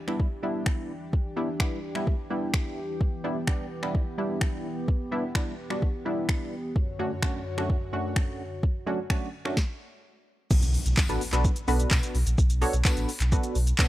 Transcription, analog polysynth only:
0.07 G3 B3 D4 E4
0.43 G3 B3 D4 E4
1.36 G3 B3 D4 E4
1.60 G3 B3 D4 E4
1.95 G3 B3 D4 E4
2.30 G3 B3 D4 E4
3.24 G3 B3 D4 E4
3.47 G3 B3 D4 G4
3.83 G3 B3 D4 E4
4.18 G3 B3 D4 E4
5.11 G3 B3 D4 E4
5.35 G3 B3 D4 E4
5.70 G3 B3 D4 F#4
6.05 G3 B3 D4 E4
6.99 F#2 A3 C#4 D4 F#4
7.22 F#2 A3 C#4 D4 F#4
7.58 F#2 A3 C#4 D4 F#4
7.93 F#2 A3 C#4 D4 F#4
8.86 F#2 A3 C#4 D4 F#4
9.10 F#2 A3 C#4 D4 F#4
9.45 F#2 A3 C#4 D4 F#4
11.09 B3 D4 F#4 A4 B4
11.33 B3 D4 F#4 A4 B4
11.68 B3 D4 F#4 A4 B4
12.61 B3 D4 F#4 A4 C#5
12.85 B3 D4 F#4 A4 B4
13.32 B3 D4 F#4 A4 B4
13.79 B3 D4 F#4 A4 C#5

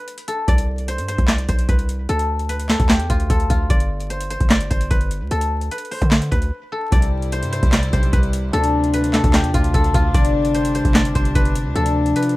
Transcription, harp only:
6.90 C3 G3 E4 G4
7.92 C3 G3 E4 G4
8.51 C3 A3 D4 F4
10.12 C3 G3 D4 G4
11.74 C3 F3 D4 A4

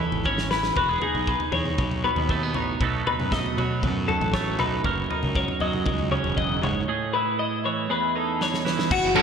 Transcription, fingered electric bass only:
0.12 G#1
0.51 A1
0.77 E1
1.15 B1
1.52 E2
1.79 B1
2.16 D#2
2.54 A1
2.81 B1
3.19 F#2
3.57 B2
3.83 F#2
4.21 A1
4.59 B1
4.85 F#1
5.23 C#2
5.61 F#2
5.86 C#2
6.25 E1
6.63 F#1
8.91 F#1
9.04 F#1

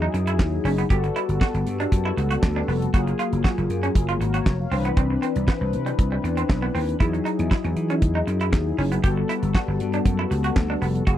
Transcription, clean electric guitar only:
0.02 D#4
0.14 muted clean electric guitar stroke
0.27 E4
0.40 muted clean electric guitar stroke
0.65 C#4
0.78 B3
0.90 G4
1.04 muted clean electric guitar stroke
1.16 E4
1.41 F#4
1.55 muted clean electric guitar stroke
1.80 D4
2.05 E4
2.17 muted clean electric guitar stroke
2.31 F#4
2.43 muted clean electric guitar stroke
2.56 D4
2.68 B3
2.94 F#4
3.07 muted clean electric guitar stroke
3.19 F4
3.44 F#4
3.58 muted clean electric guitar stroke
3.83 C#4
4.09 F4
4.21 muted clean electric guitar stroke
4.34 F#4
4.46 muted clean electric guitar stroke
4.72 C4
4.85 B3
4.97 C4
5.10 muted clean electric guitar stroke
5.22 C4
5.48 B3
5.61 muted clean electric guitar stroke
5.86 G3
6.12 G3
6.24 muted clean electric guitar stroke
6.37 C4
6.49 muted clean electric guitar stroke
6.62 B3
6.75 C4
7.00 E4
7.13 muted clean electric guitar stroke
7.25 D#4
7.51 E4
7.64 muted clean electric guitar stroke
7.90 C#4
8.15 D#4
8.27 muted clean electric guitar stroke
8.41 E4
8.53 muted clean electric guitar stroke
8.78 C#4
8.92 B3
9.04 G4
9.17 muted clean electric guitar stroke
9.29 E4
9.55 F#4
9.68 muted clean electric guitar stroke
9.94 D4
10.19 E4
10.31 muted clean electric guitar stroke
10.44 F#4
10.56 muted clean electric guitar stroke
10.70 D4
10.82 B3
11.07 F#4

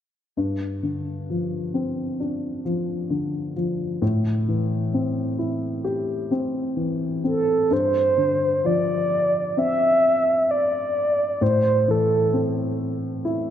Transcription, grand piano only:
0.37 G2
0.83 D3
1.30 F3
1.74 C4
2.20 D4
2.65 F3
3.10 D3
3.56 F3
4.02 A2
4.48 E3
4.94 C4
5.39 E4
5.84 G4
6.31 C4
6.77 E3
7.24 C4
7.71 G2
8.18 D3
8.65 F3
9.57 C4
11.41 A2
11.88 E3
12.33 C4
13.25 E4

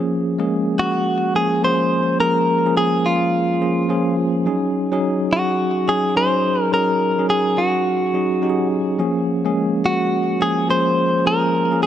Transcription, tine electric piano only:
Already playing: F3 A#3 C#4 G#4
0.39 G#3 A#3 C#4 G#4
1.34 F3 A#3 C#4 G#4
1.63 F3 A#3 C#4 G#4
2.19 F3 A#3 C#4 G#4
2.65 F3 A#3 C#4 G#4
3.61 F3 A#3 C#4 G#4
3.89 F3 A#3 C#4 G#4
4.46 F#3 C#4 D#4 G#4
4.92 F#3 C#4 D#4 G#4
5.87 F#3 C#4 D#4 G#4
6.15 F#3 C#4 D#4 G#4
6.72 F#3 C#4 D#4 G#4
7.18 F#3 C#4 D#4 G#4
8.14 F#3 C#4 D#4 G#4
8.42 F#3 C#4 D#4 G4
8.50 G#4
8.98 F3 A#3 C#4 G#4
9.45 G#3 A#3 C#4 G#4
10.40 F3 A#3 C#4 G#4
10.68 F3 A#3 C#4 G#4
11.25 F3 A#3 C#4 G#4
11.71 F3 A#3 C#4 G#4

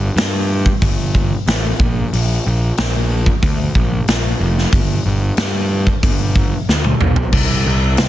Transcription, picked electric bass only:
0.16 G2
0.82 G1
1.47 A1
1.79 A#1
2.13 A#1
2.47 A#1
2.79 A#1
3.43 D2
3.75 A#1
4.08 A#1
4.40 F1
4.73 G1
5.06 G1
5.38 G2
6.03 G1
6.69 D2
7.01 B1
7.32 C2
7.66 C2
7.99 C2

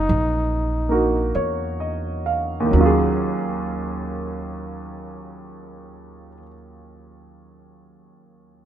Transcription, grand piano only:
Already playing: F#3 A#3 C#4 F4 G#4
0.89 A#3 D#4 F#4 A#4
1.35 C#5
1.80 D#5
2.26 F5
2.60 D#2
2.65 D#3
2.71 F#3
2.76 C#4
2.80 F4
2.86 G#4

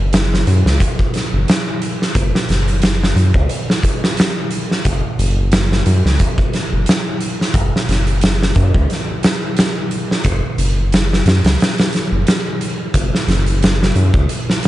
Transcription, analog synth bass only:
Already playing: F#1
0.47 F#2
0.66 C#2
1.33 F#1
2.15 F#1
2.49 F#1
3.16 F#2
3.34 C#2
4.85 F#1
5.18 F#1
5.86 F#2
6.05 C#2
6.72 F#1
7.54 F#1
7.88 F#1
8.56 F#2
8.74 C#2
10.25 F#1
10.58 F#1
11.25 F#2
11.44 C#2
12.11 F#1
12.94 F#1
13.28 F#1
13.96 F#2
14.14 C#2

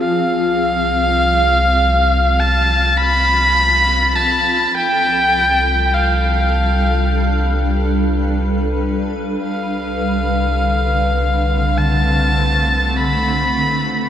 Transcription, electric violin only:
0.02 F5
2.40 A5
2.97 B5
4.16 A5
4.76 G5
5.94 F5
9.43 F5
11.77 A5
12.97 B5

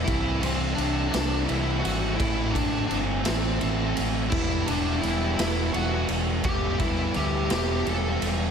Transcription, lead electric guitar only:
0.04 E4
0.40 C4
0.75 D4
1.09 D4
1.44 E4
1.80 F#4
2.15 E4
2.51 D4
2.87 D4
3.24 C4
4.30 E4
4.66 D4
5.00 E4
5.36 E4
5.73 F#4
6.45 G4
6.80 E4
7.16 G4
7.54 G4
7.89 A4

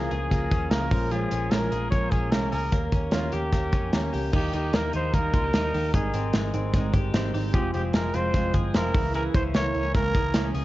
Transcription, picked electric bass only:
0.11 C#2
0.31 C#2
0.51 D#2
0.71 C#2
0.92 A#1
1.32 A#1
1.52 A#1
1.72 A#1
1.92 A#1
2.12 A#1
2.32 C2
2.53 C#2
2.72 D#2
2.92 D#2
3.13 D#2
3.33 D#2
3.53 D#2
3.73 F2
3.94 D#2
4.14 C#2
4.34 D#2
4.54 D#2
4.74 D#2
4.94 D#2
5.14 D#2
5.34 C#2
5.54 D#2
5.74 D#2
5.94 G#1
6.14 G#1
6.34 G#1
6.54 G#1
6.74 G#1
6.94 G1
7.14 G#1
7.34 G#1
7.54 F1
7.75 F1
7.95 F1
8.14 F1
8.34 F1
8.54 G1
8.75 F1
8.94 C#2
9.34 C#2
9.55 C#2
9.75 C#2
9.95 C#2
10.15 C#2
10.34 C#2
10.54 C#2

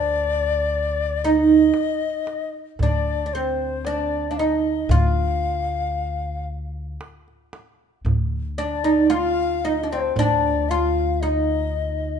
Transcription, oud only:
Already playing: D4
1.24 D#4
2.83 D4
3.26 D4
3.35 C4
3.87 D4
4.31 D4
4.39 D#4
4.91 F4
8.58 D4
8.84 D#4
9.10 F4
9.65 D#4
9.83 D4
9.93 C4
10.19 D4
10.71 F4
11.23 D#4

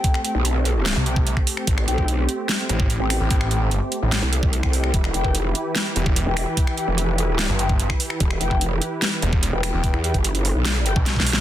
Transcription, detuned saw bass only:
0.96 C2
2.69 A1
3.20 A1
3.62 G#1
4.02 A1
5.96 E1
7.49 G1
9.22 E1
9.74 E1
10.96 B1

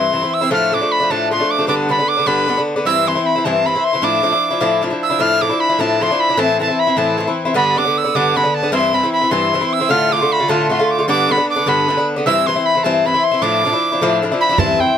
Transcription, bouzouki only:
Already playing: G2 E3 C4 E4
0.12 G2 E3 C4 E4
0.22 E3 C4 E4
0.41 E3 C4 E4
0.50 A2 F3 A3 D4
0.72 A2 F3 A3 D4
0.81 F3 A3 D4
1.00 F3 A3 D4
1.10 A2 F3 A3 D4
1.31 A2 F3 A3 D4
1.40 F3 A3 D4
1.59 F3 A3 D4
1.67 G2 D3 B3 D4
1.89 G2 D3 B3 D4
1.99 D3 B3 D4
2.17 D3 B3 D4
2.26 G2 D3 B3 D4
2.48 G2 D3 B3 D4
2.58 D3 B3 D4
2.76 D3 B3 D4
2.85 G2 E3 C4 E4
3.06 G2 E3 C4 E4
3.15 E3 C4 E4
3.36 E3 C4 E4
3.45 G2 E3 C4 E4
3.66 G2 E3 C4 E4
3.75 E3 C4 E4
3.93 E3 C4 E4
4.02 A2 F3 D4 E4
4.22 A2 F3 D4 E4
4.32 F3 D4 E4
4.51 F3 D4 E4
4.60 A2 F3 D4 E4
4.82 A2 F3 D4 E4
4.90 F3 D4 E4
5.10 F3 D4 E4
5.19 A2 F3 D4 E4
5.41 A2 F3 D4 E4
5.49 F3 D4 E4
5.69 F3 D4 E4
5.79 A2 F3 D4 E4
6.00 A2 F3 D4 E4
6.11 F3 D4 E4
6.29 F3 D4 E4
6.37 A2 E3 C4 E4
6.59 A2 E3 C4 E4
6.68 E3 C4 E4
6.87 E3 C4 E4
6.97 A2 E3 C4 E4
7.18 A2 E3 C4 E4
7.27 E3 C4 E4
7.45 E3 C4 E4
7.54 G2 D3 B3 D4
7.76 G2 D3 B3 D4
7.85 D3 B3 D4
8.04 D3 B3 D4
8.15 G2 D3 B3 D4
8.35 G2 D3 B3 D4
8.43 D3 B3 D4
8.63 D3 B3 D4
8.72 G2 E3 C4 E4
8.93 G2 E3 C4 E4
9.03 E3 C4 E4
9.21 E3 C4 E4
9.31 G2 E3 C4 E4
9.53 G2 E3 C4 E4
9.61 E3 C4 E4
9.80 E3 C4 E4
9.89 A2 D3 A3 F4
10.11 A2 D3 A3 F4
10.21 D3 A3 F4
10.39 D3 A3 F4
10.48 A2 D3 A3 F4
10.69 A2 D3 A3 F4
10.79 D3 A3 F4
10.99 D3 A3 F4
11.08 G2 D3 B3 D4
11.29 G2 D3 B3 D4
11.37 D3 B3 D4
11.56 D3 B3 D4
11.66 G2 D3 B3 D4
11.88 G2 D3 B3 D4
11.97 D3 B3 D4
12.16 D3 B3 D4
12.26 G2 E3 C4 E4
12.47 G2 E3 C4 E4
12.56 E3 C4 E4
12.75 E3 C4 E4
12.84 G2 E3 C4 E4
13.05 G2 E3 C4 E4
13.14 E3 C4 E4
13.32 E3 C4 E4
13.42 A2 F3 D4 E4
13.65 A2 F3 D4 E4
13.73 F3 D4 E4
13.92 F3 D4 E4
14.01 A2 F3 D4 E4
14.22 A2 F3 D4 E4
14.32 F3 D4 E4
14.49 F3 D4 E4
14.58 G2 E3 C4 E4
14.80 E3 C4 E4

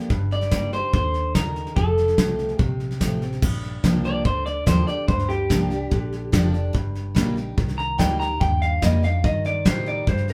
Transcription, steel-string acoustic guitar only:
0.11 G2
0.52 G3 A#3 D#4 G4
0.73 D#4 G4
0.94 D3
1.36 D#3
1.78 F3
2.18 F3 A3 C4 G4
2.60 C3
3.00 F3 A3 C4 G4
3.22 C4 G4
3.43 G2
3.83 F3 A#3 D4 G4
4.26 D3
4.66 F3 A#3 D4 G4
4.88 D4 G4
5.08 G2
5.50 F3 A#3 D4 G4
5.70 D4 G4
5.91 D3
6.32 F3 A#3 D4 G4
6.52 D4 G4
6.73 G2
7.15 G3 A#3 D#4 G4
7.36 D#4 G4
7.58 D#3
7.98 G3 A#3 D#4 G4
8.20 D#4 G4
8.41 G2
8.82 G3 A#3 D#4 G4
9.03 D#4 G4
9.24 D#3
9.65 G3 D#4 G4
10.07 G2

